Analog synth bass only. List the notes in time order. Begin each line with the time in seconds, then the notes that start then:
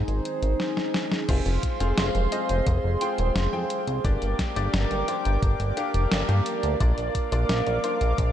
0.08 G#1
0.42 G#1
1.29 F1
1.46 F1
1.81 F1
1.98 F1
2.15 F1
2.49 F1
2.67 F1
2.84 F1
3.18 D#1
3.36 F1
3.53 F2
3.87 C2
4.05 G1
4.22 G1
4.56 G1
4.74 G1
4.91 G1
5.25 G1
5.43 G1
5.60 G1
5.94 F1
6.12 G1
6.29 G2
6.63 D2
6.80 A#1
6.98 A#1
7.32 A#1
7.49 A#1
7.67 A#1
8.01 A#1
8.18 A#1